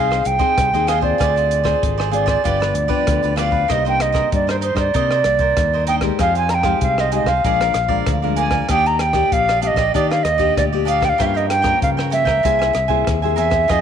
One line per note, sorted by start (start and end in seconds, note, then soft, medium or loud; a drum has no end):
0.00 0.22 C2 medium
0.00 0.55 F3 medium
0.00 0.37 C4 medium
0.00 0.37 D#4 medium
0.00 0.38 G#4 medium
0.00 0.28 F5 medium
0.11 0.23 G#4 soft
0.11 0.24 C5 soft
0.11 0.24 D#5 soft
0.11 cross-stick medium
0.24 0.39 C2 medium
0.24 0.90 G5 medium
0.24 muted cavaquinho stroke soft
0.24 closed hi-hat medium
0.39 0.67 C4 medium
0.39 0.67 D#4 medium
0.39 0.68 G#4 medium
0.39 0.71 G#4 medium
0.39 0.71 C5 medium
0.39 0.70 D#5 medium
0.39 kick medium
0.39 closed hi-hat soft
0.58 0.71 C2 medium
0.58 1.17 C3 medium
0.58 kick medium
0.58 cross-stick medium
0.58 closed hi-hat medium
0.73 1.13 D#2 medium
0.73 1.00 C4 medium
0.73 1.00 D#4 medium
0.73 1.00 G#4 medium
0.73 0.87 G#4 soft
0.73 0.87 C5 soft
0.73 0.88 D#5 soft
0.73 closed hi-hat soft
0.87 1.02 F4 medium
0.87 1.02 G#4 medium
0.87 1.01 C5 medium
0.87 1.00 D#5 medium
0.87 1.02 F5 medium
0.87 cross-stick medium
0.87 closed hi-hat medium
1.01 1.61 C4 medium
1.01 1.61 F4 medium
1.01 1.18 G#4 soft
1.01 1.61 G#4 medium
1.01 1.18 C5 soft
1.01 1.82 D5 medium
1.01 1.17 D#5 soft
1.01 kick medium
1.18 1.73 D2 loud
1.18 1.79 D3 medium
1.18 1.34 F4 medium
1.18 1.34 G#4 medium
1.18 1.34 C5 medium
1.18 1.34 D5 medium
1.18 kick medium
1.18 cross-stick medium
1.18 closed hi-hat medium
1.36 1.64 G#4 soft
1.36 1.63 C5 soft
1.36 1.62 D5 soft
1.36 closed hi-hat soft
1.51 closed hi-hat medium
1.64 2.07 C4 medium
1.64 2.08 F4 medium
1.64 2.08 G#4 medium
1.64 1.96 G#4 medium
1.64 1.96 C5 medium
1.64 1.95 D5 medium
1.64 kick medium
1.64 cross-stick medium
1.82 2.36 G#1 medium
1.82 2.42 D3 medium
1.82 kick medium
1.82 closed hi-hat medium
1.97 2.10 G#4 soft
1.97 2.11 C5 soft
1.97 2.12 D5 medium
1.97 cross-stick medium
2.11 2.39 C4 medium
2.11 2.27 F4 soft
2.11 2.39 F4 medium
2.11 2.27 G#4 medium
2.11 2.40 G#4 medium
2.11 2.26 C5 soft
2.11 2.25 D5 soft
2.11 3.35 D5 medium
2.11 closed hi-hat medium
2.26 2.43 G#4 soft
2.26 2.43 C5 medium
2.26 2.42 D5 medium
2.26 kick medium
2.26 cross-stick medium
2.26 closed hi-hat soft
2.44 2.72 G1 medium
2.44 3.04 G2 medium
2.44 2.86 F3 medium
2.44 2.87 B3 medium
2.44 2.87 D4 medium
2.44 2.59 F4 medium
2.44 2.59 G4 medium
2.44 2.59 B4 medium
2.44 2.59 D5 medium
2.44 kick medium
2.44 closed hi-hat medium
2.60 2.74 G4 soft
2.60 2.74 B4 soft
2.60 2.74 D5 soft
2.60 cross-stick medium
2.74 2.88 D2 medium
2.74 muted cavaquinho stroke soft
2.74 closed hi-hat soft
2.88 3.32 F3 medium
2.88 3.32 B3 medium
2.88 3.33 D4 medium
2.88 3.21 G4 medium
2.88 3.20 B4 medium
2.88 3.20 D5 medium
2.88 kick medium
3.07 3.21 D2 medium
3.07 3.67 D3 medium
3.07 kick medium
3.07 cross-stick medium
3.07 closed hi-hat medium
3.23 3.64 D2 medium
3.23 3.36 G4 soft
3.23 3.37 B4 soft
3.23 3.37 D5 soft
3.23 closed hi-hat soft
3.36 3.64 F3 medium
3.36 3.64 B3 medium
3.36 3.64 D4 medium
3.36 3.52 F4 medium
3.36 3.51 G4 medium
3.36 3.51 B4 medium
3.36 3.50 D5 medium
3.36 3.73 F5 medium
3.36 cross-stick medium
3.36 closed hi-hat soft
3.51 3.68 G4 soft
3.51 3.67 B4 soft
3.51 3.67 D5 soft
3.51 kick medium
3.68 4.23 C2 medium
3.68 4.29 C3 medium
3.68 3.80 D#3 medium
3.68 3.81 A#3 medium
3.68 3.81 D4 medium
3.68 3.83 D#4 medium
3.68 3.84 A#4 medium
3.68 3.84 C5 medium
3.68 3.84 D#5 medium
3.68 3.86 D#5 medium
3.68 kick medium
3.68 cross-stick medium
3.68 closed hi-hat medium
3.85 4.12 D#3 soft
3.85 4.12 A#3 medium
3.85 4.12 D4 medium
3.85 4.13 A#4 soft
3.85 4.12 C5 soft
3.85 4.11 D#5 soft
3.85 4.03 G5 medium
3.85 closed hi-hat soft
4.00 4.33 D#5 medium
4.00 cross-stick medium
4.00 closed hi-hat medium
4.12 4.26 D#3 medium
4.12 4.26 A#3 medium
4.12 4.26 D4 medium
4.12 4.45 A#4 medium
4.12 4.45 C5 medium
4.12 4.44 D#5 medium
4.12 kick medium
4.12 cross-stick medium
4.12 closed hi-hat soft
4.32 4.72 G2 medium
4.32 4.92 G2 medium
4.32 4.90 D#3 medium
4.32 4.90 A#3 medium
4.32 4.90 D4 medium
4.32 4.48 D5 medium
4.32 kick medium
4.32 closed hi-hat medium
4.47 4.60 A#4 soft
4.47 4.61 C5 soft
4.47 4.56 C5 medium
4.47 4.62 D#5 soft
4.47 cross-stick medium
4.47 closed hi-hat soft
4.61 4.77 D#4 soft
4.61 4.76 A#4 soft
4.61 4.75 C5 soft
4.61 4.78 C5 medium
4.61 4.74 D#5 soft
4.61 closed hi-hat medium
4.75 4.90 G2 medium
4.75 4.93 A#4 soft
4.75 4.92 C5 medium
4.75 5.84 D5 medium
4.75 4.92 D#5 medium
4.75 kick medium
4.75 cross-stick medium
4.75 closed hi-hat soft
4.94 5.54 C3 medium
4.94 5.21 C3 medium
4.94 5.13 D#3 medium
4.94 5.13 A#3 medium
4.94 5.13 D4 medium
4.94 5.09 D#4 medium
4.94 5.09 A#4 medium
4.94 5.09 C5 medium
4.94 5.10 D#5 medium
4.94 kick medium
4.94 closed hi-hat medium
5.11 5.25 A#4 soft
5.11 5.25 C5 soft
5.11 5.25 D#5 soft
5.11 cross-stick medium
5.24 5.52 C2 medium
5.24 5.83 D#3 soft
5.24 5.83 A#3 medium
5.24 muted cavaquinho stroke soft
5.24 cross-stick medium
5.24 closed hi-hat soft
5.39 5.71 A#4 medium
5.39 5.71 C5 medium
5.39 kick medium
5.39 closed hi-hat soft
5.57 6.10 D#2 medium
5.57 6.17 G2 medium
5.57 kick medium
5.57 cross-stick medium
5.57 closed hi-hat medium
5.73 5.86 A#4 soft
5.73 5.87 C5 soft
5.73 5.87 D#5 soft
5.87 5.98 D#3 medium
5.87 5.98 A#3 medium
5.87 5.98 D4 medium
5.87 6.02 D#4 medium
5.87 6.02 A#4 medium
5.87 6.02 C5 medium
5.87 6.01 D#5 medium
5.87 5.95 G5 medium
5.87 closed hi-hat medium
6.01 6.29 G#3 medium
6.01 6.29 D#4 medium
6.01 6.30 G4 medium
6.01 6.18 A#4 soft
6.01 6.18 C5 soft
6.01 6.17 D#5 soft
6.01 kick medium
6.01 cross-stick medium
6.01 closed hi-hat soft
6.19 6.73 F2 medium
6.19 6.79 F3 medium
6.19 6.34 D#4 medium
6.19 6.34 G#4 medium
6.19 6.34 C5 medium
6.19 6.35 F5 medium
6.19 kick medium
6.19 cross-stick medium
6.19 closed hi-hat medium
6.35 6.64 G#4 soft
6.35 6.64 C5 soft
6.35 6.62 F5 soft
6.35 6.52 G#5 medium
6.35 closed hi-hat soft
6.49 6.55 A#5 medium
6.49 cross-stick medium
6.49 closed hi-hat soft
6.54 6.82 G5 medium
6.63 7.07 G#3 soft
6.63 7.07 D#4 medium
6.63 7.08 G4 medium
6.63 6.96 G#4 medium
6.63 6.96 C5 medium
6.63 6.95 F5 medium
6.63 kick medium
6.63 cross-stick medium
6.63 closed hi-hat soft
6.81 7.22 C2 medium
6.81 7.41 C3 medium
6.81 7.02 F5 medium
6.81 kick medium
6.81 closed hi-hat medium
6.98 7.11 G#4 soft
6.98 7.11 C5 soft
6.98 7.14 D#5 medium
6.98 7.12 F5 medium
6.98 cross-stick medium
7.11 7.31 G#3 medium
7.11 7.27 D#4 soft
7.11 7.31 D#4 medium
7.11 7.31 G4 medium
7.11 7.27 G#4 soft
7.11 7.26 C5 soft
7.11 7.30 D#5 medium
7.11 7.25 F5 medium
7.11 closed hi-hat soft
7.24 7.39 C2 medium
7.24 7.43 G#4 medium
7.24 7.42 C5 medium
7.24 7.42 F5 medium
7.24 kick medium
7.24 cross-stick medium
7.29 8.11 F5 medium
7.44 7.71 A#1 medium
7.44 8.04 A#2 medium
7.44 7.74 F3 medium
7.44 7.74 G#3 medium
7.44 7.74 D4 medium
7.44 7.59 G#4 medium
7.44 7.59 A#4 medium
7.44 7.59 D5 medium
7.44 7.60 F5 medium
7.44 kick medium
7.44 closed hi-hat medium
7.60 7.73 A#4 soft
7.60 7.73 D5 medium
7.60 7.73 F5 soft
7.60 cross-stick medium
7.60 closed hi-hat soft
7.73 8.02 A#1 medium
7.73 muted cavaquinho stroke soft
7.73 cross-stick medium
7.73 closed hi-hat soft
7.88 8.16 F3 medium
7.88 8.16 G#3 medium
7.88 8.17 D4 medium
7.88 8.21 A#4 medium
7.88 8.20 D5 medium
7.88 8.21 F5 medium
7.88 kick medium
8.06 8.60 D2 medium
8.06 8.66 F2 medium
8.06 kick medium
8.06 cross-stick medium
8.06 closed hi-hat medium
8.22 8.65 F3 medium
8.22 8.65 G#3 medium
8.22 8.65 D4 medium
8.22 8.35 A#4 soft
8.22 8.37 D5 soft
8.22 8.36 F5 soft
8.36 8.52 G#4 medium
8.36 8.52 A#4 medium
8.36 8.49 D5 medium
8.36 8.51 F5 medium
8.36 8.68 G#5 medium
8.36 closed hi-hat soft
8.50 8.68 A#4 soft
8.50 8.67 D5 medium
8.50 8.67 F5 soft
8.50 kick medium
8.50 cross-stick medium
8.50 closed hi-hat soft
8.69 9.23 D#2 medium
8.69 9.29 D#3 soft
8.69 9.12 A#3 medium
8.69 8.84 D4 medium
8.69 9.12 D4 medium
8.69 8.84 G4 medium
8.69 9.12 G4 medium
8.69 8.85 D5 medium
8.69 8.84 D#5 medium
8.69 8.88 G5 loud
8.69 kick medium
8.69 cross-stick medium
8.69 closed hi-hat medium
8.86 9.14 G4 soft
8.86 9.13 D5 soft
8.86 9.14 D#5 soft
8.86 9.02 A#5 medium
8.86 closed hi-hat soft
8.99 9.34 G5 medium
8.99 cross-stick medium
8.99 closed hi-hat soft
9.13 9.57 A#3 medium
9.13 9.58 G4 medium
9.13 9.46 G4 medium
9.13 9.45 D5 medium
9.13 9.46 D#5 medium
9.13 kick medium
9.13 cross-stick medium
9.13 closed hi-hat soft
9.32 9.72 A#1 medium
9.32 9.91 A#2 medium
9.32 9.63 F5 loud
9.32 kick medium
9.32 closed hi-hat medium
9.48 9.61 G4 soft
9.48 9.62 D5 soft
9.48 9.62 D#5 soft
9.48 cross-stick medium
9.48 closed hi-hat soft
9.62 9.81 A#3 medium
9.62 9.77 D4 medium
9.62 9.81 D4 medium
9.62 9.77 G4 soft
9.62 9.82 G4 medium
9.62 9.75 D5 soft
9.62 9.76 D#5 medium
9.62 9.68 F5 medium
9.62 closed hi-hat soft
9.67 9.92 D#5 medium
9.74 9.90 A#1 medium
9.74 9.93 G4 medium
9.74 9.92 D5 medium
9.74 9.93 D#5 medium
9.74 kick medium
9.74 cross-stick medium
9.74 closed hi-hat soft
9.94 10.54 D#3 medium
9.94 10.21 D#3 medium
9.94 10.24 A#3 medium
9.94 10.09 D4 medium
9.94 10.24 D4 medium
9.94 10.09 G4 medium
9.94 10.24 G4 medium
9.94 10.09 D5 medium
9.94 10.10 D#5 medium
9.94 kick medium
9.94 closed hi-hat medium
10.10 10.24 G4 soft
10.10 10.24 D5 soft
10.10 10.24 D#5 soft
10.10 10.25 F5 medium
10.10 cross-stick medium
10.23 10.52 D#2 medium
10.23 10.56 D#5 medium
10.23 muted cavaquinho stroke soft
10.23 cross-stick medium
10.23 closed hi-hat soft
10.38 10.66 A#3 medium
10.38 10.67 D4 medium
10.38 10.67 G4 medium
10.38 10.71 G4 medium
10.38 10.70 D5 medium
10.38 10.71 D#5 medium
10.38 kick medium
10.38 closed hi-hat soft
10.56 11.11 D2 medium
10.56 11.16 A#2 medium
10.56 10.65 D5 medium
10.56 kick medium
10.56 cross-stick medium
10.56 closed hi-hat medium
10.73 11.15 A#3 medium
10.73 11.15 D4 medium
10.73 11.16 G4 medium
10.73 10.85 G4 soft
10.73 10.86 D5 medium
10.73 10.85 D#5 soft
10.85 11.01 D4 medium
10.85 11.01 G4 medium
10.85 10.99 D5 medium
10.85 11.00 D#5 medium
10.85 11.06 F5 loud
10.85 closed hi-hat medium
11.00 11.18 G4 soft
11.00 11.17 D5 soft
11.00 11.17 D#5 soft
11.00 kick medium
11.00 cross-stick medium
11.00 closed hi-hat soft
11.05 11.10 G5 medium
11.09 11.22 F5 loud
11.18 11.73 G2 loud
11.18 11.79 G2 medium
11.18 11.62 F3 medium
11.18 11.62 A#3 medium
11.18 11.62 C#4 medium
11.18 11.33 F4 medium
11.18 11.34 A#4 medium
11.18 11.33 C#5 medium
11.18 11.27 E5 medium
11.18 11.33 G5 medium
11.18 kick medium
11.18 cross-stick medium
11.18 closed hi-hat medium
11.26 11.38 F5 loud
11.34 11.63 A#4 soft
11.34 11.62 C#5 soft
11.34 11.49 D#5 medium
11.34 11.61 G5 soft
11.34 closed hi-hat soft
11.49 11.79 G5 medium
11.49 cross-stick medium
11.49 closed hi-hat medium
11.62 12.07 F3 soft
11.62 12.08 A#3 medium
11.62 12.08 C#4 medium
11.62 11.96 A#4 medium
11.62 11.95 C#5 medium
11.62 11.95 G5 medium
11.62 kick medium
11.62 cross-stick medium
11.62 closed hi-hat soft
11.82 12.42 G2 medium
11.82 12.22 C#3 medium
11.82 11.90 F5 medium
11.82 kick medium
11.82 closed hi-hat medium
11.97 12.10 A#4 soft
11.97 12.10 C#5 soft
11.97 12.11 G5 soft
11.97 cross-stick medium
12.10 12.39 F3 medium
12.10 12.40 A#3 medium
12.10 12.40 C#4 medium
12.10 12.26 F4 soft
12.10 12.26 A#4 soft
12.10 12.25 C#5 soft
12.10 13.08 E5 medium
12.10 12.24 G5 medium
12.10 closed hi-hat medium
12.25 12.40 C#2 medium
12.25 12.42 A#4 medium
12.25 12.42 C#5 medium
12.25 12.42 G5 medium
12.25 kick medium
12.25 cross-stick medium
12.43 12.72 C2 medium
12.43 13.04 C3 medium
12.43 12.74 A#3 medium
12.43 12.75 E4 medium
12.43 12.75 G#4 medium
12.43 12.59 A#4 medium
12.43 12.59 C5 medium
12.43 12.59 E5 medium
12.43 12.58 G#5 medium
12.43 kick medium
12.43 closed hi-hat medium
12.59 12.72 C5 soft
12.59 12.73 E5 soft
12.59 12.73 G#5 soft
12.59 cross-stick medium
12.59 closed hi-hat soft
12.73 13.04 C2 medium
12.73 muted cavaquinho stroke soft
12.73 cross-stick medium
12.73 closed hi-hat soft
12.88 13.17 A#3 medium
12.88 13.17 E4 medium
12.88 13.18 G#4 medium
12.88 13.21 C5 medium
12.88 13.21 E5 medium
12.88 13.20 G#5 medium
12.88 kick medium
13.07 13.36 D#2 medium
13.07 13.67 C3 medium
13.07 kick medium
13.07 cross-stick medium
13.07 closed hi-hat medium
13.22 13.66 A#3 medium
13.22 13.66 E4 medium
13.22 13.66 G#4 medium
13.22 13.36 C5 soft
13.22 13.36 E5 soft
13.22 13.37 G#5 soft
13.36 13.66 E2 medium
13.36 13.52 A#4 medium
13.36 13.50 C5 medium
13.36 13.72 E5 medium
13.36 13.49 E5 medium
13.36 13.49 G#5 medium
13.36 closed hi-hat soft
13.50 13.68 C5 soft
13.50 13.67 E5 soft
13.50 13.67 G#5 soft
13.50 kick medium
13.50 cross-stick medium
13.50 closed hi-hat soft
13.68 13.81 F2 medium
13.68 13.81 F3 medium
13.68 13.81 C4 medium
13.68 13.81 D#4 soft
13.68 13.81 F4 medium
13.68 13.81 G#4 medium
13.68 13.81 C5 medium
13.68 13.81 D#5 medium
13.68 13.81 D#5 loud
13.68 kick medium
13.68 cross-stick medium
13.68 closed hi-hat medium